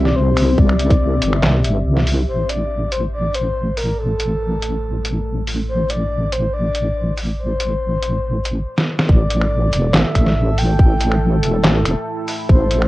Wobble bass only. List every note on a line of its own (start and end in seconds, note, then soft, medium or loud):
0.00 0.57 C2 medium
0.58 1.20 C2 loud
1.22 1.45 G1 medium
1.43 1.66 C2 medium
1.64 1.84 G1 medium
1.86 2.27 C2 medium
2.28 8.66 A1 medium
9.09 9.71 A1 loud
9.73 9.93 E1 medium
9.94 10.04 A1 medium
10.15 10.78 A1 medium
10.79 11.42 A1 loud
11.43 11.66 E1 medium
11.64 11.84 A1 medium
11.86 11.96 E1 medium
12.49 12.88 A1 loud